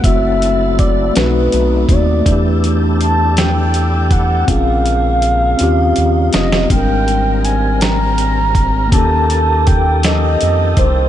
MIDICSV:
0, 0, Header, 1, 6, 480
1, 0, Start_track
1, 0, Tempo, 740741
1, 22, Time_signature, 6, 3, 24, 8
1, 7186, End_track
2, 0, Start_track
2, 0, Title_t, "Soft synth lead"
2, 0, Program_c, 0, 80
2, 30, Note_on_c, 0, 76, 114
2, 514, Note_on_c, 0, 74, 95
2, 523, Note_off_c, 0, 76, 0
2, 753, Note_on_c, 0, 71, 92
2, 762, Note_off_c, 0, 74, 0
2, 1241, Note_on_c, 0, 74, 85
2, 1250, Note_off_c, 0, 71, 0
2, 1711, Note_off_c, 0, 74, 0
2, 1950, Note_on_c, 0, 81, 105
2, 2190, Note_on_c, 0, 79, 104
2, 2200, Note_off_c, 0, 81, 0
2, 2670, Note_on_c, 0, 78, 93
2, 2680, Note_off_c, 0, 79, 0
2, 2907, Note_on_c, 0, 77, 122
2, 2916, Note_off_c, 0, 78, 0
2, 4102, Note_off_c, 0, 77, 0
2, 4106, Note_on_c, 0, 75, 90
2, 4327, Note_off_c, 0, 75, 0
2, 4348, Note_on_c, 0, 79, 118
2, 4827, Note_on_c, 0, 80, 109
2, 4836, Note_off_c, 0, 79, 0
2, 5065, Note_on_c, 0, 82, 120
2, 5074, Note_off_c, 0, 80, 0
2, 5789, Note_on_c, 0, 81, 113
2, 5799, Note_off_c, 0, 82, 0
2, 6269, Note_on_c, 0, 79, 109
2, 6278, Note_off_c, 0, 81, 0
2, 6514, Note_on_c, 0, 75, 106
2, 6524, Note_off_c, 0, 79, 0
2, 6990, Note_on_c, 0, 72, 87
2, 7000, Note_off_c, 0, 75, 0
2, 7186, Note_off_c, 0, 72, 0
2, 7186, End_track
3, 0, Start_track
3, 0, Title_t, "Tine electric piano"
3, 0, Program_c, 1, 4
3, 0, Control_c, 1, 64, 127
3, 11, Note_on_c, 1, 57, 68
3, 24, Note_on_c, 1, 60, 62
3, 32, Control_c, 1, 64, 0
3, 36, Note_on_c, 1, 64, 58
3, 46, Note_on_c, 1, 66, 70
3, 160, Control_c, 1, 64, 127
3, 723, Note_off_c, 1, 57, 0
3, 731, Note_on_c, 1, 57, 69
3, 736, Note_off_c, 1, 60, 0
3, 743, Note_on_c, 1, 60, 70
3, 749, Note_off_c, 1, 64, 0
3, 751, Control_c, 1, 64, 0
3, 754, Note_off_c, 1, 66, 0
3, 754, Note_on_c, 1, 62, 51
3, 767, Note_on_c, 1, 66, 80
3, 790, Note_off_c, 1, 62, 0
3, 797, Note_on_c, 1, 63, 67
3, 878, Control_c, 1, 64, 127
3, 1425, Note_off_c, 1, 57, 0
3, 1433, Note_on_c, 1, 57, 68
3, 1456, Note_on_c, 1, 62, 61
3, 1463, Note_off_c, 1, 60, 0
3, 1471, Control_c, 1, 64, 0
3, 1474, Note_off_c, 1, 66, 0
3, 1481, Note_on_c, 1, 64, 57
3, 1489, Note_off_c, 1, 63, 0
3, 1504, Note_on_c, 1, 67, 73
3, 1598, Control_c, 1, 64, 127
3, 2861, Note_off_c, 1, 57, 0
3, 2873, Note_off_c, 1, 62, 0
3, 2886, Note_off_c, 1, 64, 0
3, 2891, Note_on_c, 1, 60, 61
3, 2897, Note_off_c, 1, 67, 0
3, 2901, Note_on_c, 1, 61, 60
3, 2910, Control_c, 1, 64, 0
3, 2913, Note_on_c, 1, 65, 61
3, 2924, Note_on_c, 1, 68, 67
3, 3013, Control_c, 1, 64, 127
3, 3602, Note_off_c, 1, 60, 0
3, 3610, Note_on_c, 1, 60, 80
3, 3613, Note_off_c, 1, 61, 0
3, 3621, Note_on_c, 1, 61, 74
3, 3627, Note_off_c, 1, 65, 0
3, 3630, Control_c, 1, 64, 0
3, 3633, Note_off_c, 1, 68, 0
3, 3634, Note_on_c, 1, 65, 77
3, 3645, Note_on_c, 1, 67, 91
3, 3754, Control_c, 1, 64, 127
3, 4312, Note_on_c, 1, 59, 50
3, 4336, Note_off_c, 1, 60, 0
3, 4336, Note_on_c, 1, 62, 59
3, 4341, Note_off_c, 1, 61, 0
3, 4348, Note_off_c, 1, 65, 0
3, 4350, Control_c, 1, 64, 0
3, 4354, Note_off_c, 1, 67, 0
3, 4356, Note_on_c, 1, 60, 63
3, 4361, Note_on_c, 1, 55, 60
3, 4369, Note_off_c, 1, 59, 0
3, 4383, Note_on_c, 1, 70, 71
3, 4481, Control_c, 1, 64, 127
3, 5750, Note_on_c, 1, 58, 66
3, 5753, Note_off_c, 1, 62, 0
3, 5763, Note_off_c, 1, 60, 0
3, 5766, Note_off_c, 1, 55, 0
3, 5773, Note_on_c, 1, 61, 58
3, 5776, Note_off_c, 1, 70, 0
3, 5790, Control_c, 1, 64, 0
3, 5797, Note_on_c, 1, 67, 61
3, 5820, Note_on_c, 1, 69, 69
3, 5893, Control_c, 1, 64, 127
3, 7180, Note_off_c, 1, 58, 0
3, 7186, Note_off_c, 1, 61, 0
3, 7186, Note_off_c, 1, 67, 0
3, 7186, Note_off_c, 1, 69, 0
3, 7186, End_track
4, 0, Start_track
4, 0, Title_t, "Tonewheel organ"
4, 0, Program_c, 2, 16
4, 29, Note_on_c, 2, 60, 68
4, 30, Note_on_c, 2, 54, 70
4, 30, Note_on_c, 2, 64, 60
4, 31, Note_on_c, 2, 69, 81
4, 738, Note_off_c, 2, 60, 0
4, 739, Note_off_c, 2, 54, 0
4, 739, Note_off_c, 2, 64, 0
4, 739, Note_off_c, 2, 69, 0
4, 747, Note_on_c, 2, 63, 79
4, 749, Note_on_c, 2, 47, 65
4, 750, Note_on_c, 2, 57, 69
4, 1457, Note_off_c, 2, 63, 0
4, 1458, Note_off_c, 2, 47, 0
4, 1459, Note_off_c, 2, 57, 0
4, 1461, Note_on_c, 2, 52, 69
4, 1461, Note_on_c, 2, 64, 63
4, 1461, Note_on_c, 2, 67, 65
4, 1461, Note_on_c, 2, 69, 77
4, 1464, Note_on_c, 2, 62, 66
4, 2887, Note_off_c, 2, 52, 0
4, 2887, Note_off_c, 2, 64, 0
4, 2887, Note_off_c, 2, 67, 0
4, 2887, Note_off_c, 2, 69, 0
4, 2888, Note_off_c, 2, 62, 0
4, 2903, Note_on_c, 2, 49, 78
4, 2903, Note_on_c, 2, 56, 69
4, 2904, Note_on_c, 2, 58, 63
4, 3613, Note_off_c, 2, 49, 0
4, 3615, Note_off_c, 2, 56, 0
4, 3616, Note_off_c, 2, 58, 0
4, 3619, Note_on_c, 2, 63, 76
4, 3620, Note_on_c, 2, 49, 63
4, 3621, Note_on_c, 2, 55, 70
4, 4333, Note_off_c, 2, 63, 0
4, 4334, Note_off_c, 2, 49, 0
4, 4334, Note_off_c, 2, 55, 0
4, 4339, Note_on_c, 2, 60, 64
4, 4341, Note_on_c, 2, 70, 72
4, 4342, Note_on_c, 2, 55, 70
4, 5766, Note_off_c, 2, 60, 0
4, 5767, Note_off_c, 2, 55, 0
4, 5767, Note_off_c, 2, 70, 0
4, 5778, Note_on_c, 2, 69, 81
4, 5779, Note_on_c, 2, 58, 68
4, 5779, Note_on_c, 2, 67, 62
4, 5780, Note_on_c, 2, 51, 71
4, 7186, Note_off_c, 2, 51, 0
4, 7186, Note_off_c, 2, 58, 0
4, 7186, Note_off_c, 2, 67, 0
4, 7186, Note_off_c, 2, 69, 0
4, 7186, End_track
5, 0, Start_track
5, 0, Title_t, "Analog synth bass"
5, 0, Program_c, 3, 38
5, 31, Note_on_c, 3, 30, 106
5, 720, Note_off_c, 3, 30, 0
5, 755, Note_on_c, 3, 35, 104
5, 965, Note_off_c, 3, 35, 0
5, 996, Note_on_c, 3, 35, 96
5, 1205, Note_off_c, 3, 35, 0
5, 1228, Note_on_c, 3, 39, 93
5, 1441, Note_off_c, 3, 39, 0
5, 1471, Note_on_c, 3, 40, 106
5, 2880, Note_off_c, 3, 40, 0
5, 2909, Note_on_c, 3, 34, 109
5, 3599, Note_off_c, 3, 34, 0
5, 3634, Note_on_c, 3, 39, 117
5, 3845, Note_off_c, 3, 39, 0
5, 3874, Note_on_c, 3, 39, 91
5, 4085, Note_off_c, 3, 39, 0
5, 4112, Note_on_c, 3, 29, 90
5, 4324, Note_off_c, 3, 29, 0
5, 4348, Note_on_c, 3, 32, 119
5, 5787, Note_on_c, 3, 39, 114
5, 5797, Note_off_c, 3, 32, 0
5, 6719, Note_off_c, 3, 39, 0
5, 6755, Note_on_c, 3, 41, 91
5, 6965, Note_off_c, 3, 41, 0
5, 6984, Note_on_c, 3, 36, 93
5, 7186, Note_off_c, 3, 36, 0
5, 7186, End_track
6, 0, Start_track
6, 0, Title_t, "Drums"
6, 25, Note_on_c, 9, 36, 117
6, 27, Note_on_c, 9, 42, 79
6, 90, Note_off_c, 9, 36, 0
6, 92, Note_off_c, 9, 42, 0
6, 273, Note_on_c, 9, 42, 52
6, 338, Note_off_c, 9, 42, 0
6, 510, Note_on_c, 9, 42, 57
6, 512, Note_on_c, 9, 36, 106
6, 575, Note_off_c, 9, 42, 0
6, 577, Note_off_c, 9, 36, 0
6, 749, Note_on_c, 9, 42, 73
6, 756, Note_on_c, 9, 38, 101
6, 813, Note_off_c, 9, 42, 0
6, 821, Note_off_c, 9, 38, 0
6, 988, Note_on_c, 9, 42, 56
6, 1052, Note_off_c, 9, 42, 0
6, 1222, Note_on_c, 9, 36, 97
6, 1225, Note_on_c, 9, 42, 55
6, 1287, Note_off_c, 9, 36, 0
6, 1290, Note_off_c, 9, 42, 0
6, 1464, Note_on_c, 9, 36, 111
6, 1466, Note_on_c, 9, 42, 79
6, 1529, Note_off_c, 9, 36, 0
6, 1531, Note_off_c, 9, 42, 0
6, 1709, Note_on_c, 9, 42, 53
6, 1774, Note_off_c, 9, 42, 0
6, 1948, Note_on_c, 9, 42, 61
6, 2013, Note_off_c, 9, 42, 0
6, 2183, Note_on_c, 9, 42, 69
6, 2191, Note_on_c, 9, 38, 103
6, 2248, Note_off_c, 9, 42, 0
6, 2256, Note_off_c, 9, 38, 0
6, 2423, Note_on_c, 9, 42, 58
6, 2488, Note_off_c, 9, 42, 0
6, 2661, Note_on_c, 9, 36, 95
6, 2661, Note_on_c, 9, 42, 55
6, 2725, Note_off_c, 9, 36, 0
6, 2726, Note_off_c, 9, 42, 0
6, 2903, Note_on_c, 9, 36, 119
6, 2903, Note_on_c, 9, 42, 83
6, 2967, Note_off_c, 9, 36, 0
6, 2968, Note_off_c, 9, 42, 0
6, 3146, Note_on_c, 9, 42, 53
6, 3211, Note_off_c, 9, 42, 0
6, 3383, Note_on_c, 9, 42, 60
6, 3448, Note_off_c, 9, 42, 0
6, 3621, Note_on_c, 9, 42, 70
6, 3686, Note_off_c, 9, 42, 0
6, 3860, Note_on_c, 9, 42, 60
6, 3925, Note_off_c, 9, 42, 0
6, 4099, Note_on_c, 9, 42, 57
6, 4108, Note_on_c, 9, 38, 105
6, 4164, Note_off_c, 9, 42, 0
6, 4173, Note_off_c, 9, 38, 0
6, 4228, Note_on_c, 9, 38, 97
6, 4293, Note_off_c, 9, 38, 0
6, 4342, Note_on_c, 9, 36, 114
6, 4343, Note_on_c, 9, 42, 81
6, 4407, Note_off_c, 9, 36, 0
6, 4408, Note_off_c, 9, 42, 0
6, 4586, Note_on_c, 9, 42, 51
6, 4651, Note_off_c, 9, 42, 0
6, 4824, Note_on_c, 9, 42, 58
6, 4889, Note_off_c, 9, 42, 0
6, 5061, Note_on_c, 9, 42, 70
6, 5069, Note_on_c, 9, 38, 109
6, 5126, Note_off_c, 9, 42, 0
6, 5134, Note_off_c, 9, 38, 0
6, 5301, Note_on_c, 9, 42, 59
6, 5365, Note_off_c, 9, 42, 0
6, 5539, Note_on_c, 9, 36, 101
6, 5541, Note_on_c, 9, 42, 57
6, 5604, Note_off_c, 9, 36, 0
6, 5606, Note_off_c, 9, 42, 0
6, 5781, Note_on_c, 9, 36, 116
6, 5782, Note_on_c, 9, 42, 81
6, 5846, Note_off_c, 9, 36, 0
6, 5847, Note_off_c, 9, 42, 0
6, 6026, Note_on_c, 9, 42, 57
6, 6091, Note_off_c, 9, 42, 0
6, 6265, Note_on_c, 9, 42, 57
6, 6268, Note_on_c, 9, 36, 104
6, 6329, Note_off_c, 9, 42, 0
6, 6333, Note_off_c, 9, 36, 0
6, 6502, Note_on_c, 9, 42, 71
6, 6509, Note_on_c, 9, 38, 101
6, 6566, Note_off_c, 9, 42, 0
6, 6574, Note_off_c, 9, 38, 0
6, 6743, Note_on_c, 9, 42, 60
6, 6808, Note_off_c, 9, 42, 0
6, 6977, Note_on_c, 9, 42, 57
6, 6979, Note_on_c, 9, 36, 99
6, 7042, Note_off_c, 9, 42, 0
6, 7043, Note_off_c, 9, 36, 0
6, 7186, End_track
0, 0, End_of_file